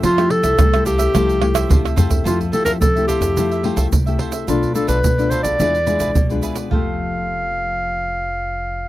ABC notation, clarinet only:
X:1
M:4/4
L:1/16
Q:1/4=108
K:F
V:1 name="Clarinet"
F2 A4 G8 z2 | F2 A B A2 G6 z4 | F2 A =B3 c d6- d z2 | f16 |]